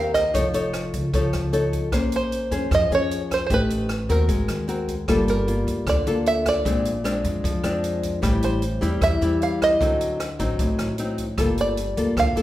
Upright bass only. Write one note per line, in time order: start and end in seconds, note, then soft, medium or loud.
0.00 0.36 D#2 medium
0.35 0.90 F1 medium
0.94 1.12 C#2 loud
1.13 1.32 C#2 medium
1.34 1.92 C#2 medium
1.92 2.48 A#1 medium
2.51 2.70 F2 medium
2.71 2.90 F2 medium
2.90 3.52 F2 medium
3.50 4.05 A1 loud
4.09 4.28 D#2 medium
4.29 4.47 G#1 medium
4.49 5.10 D#2 medium
5.08 5.63 G1 loud
5.67 5.85 D2 medium
5.87 6.05 D2 medium
6.07 6.67 D2 medium
6.65 7.20 A#1 medium
7.24 7.43 F2 loud
7.44 7.63 F2 medium
7.64 8.24 F2 medium
8.22 8.78 A1 medium
8.82 9.00 E2 medium
9.01 9.20 E2 medium
9.21 9.81 E2 medium
9.81 10.36 D2 medium
10.39 10.58 A1 medium
10.59 10.78 A1 medium
10.80 11.39 A1 medium
11.38 11.93 G1 medium
11.97 12.15 D2 medium
12.17 12.35 D2 medium
12.37 12.42 D2 medium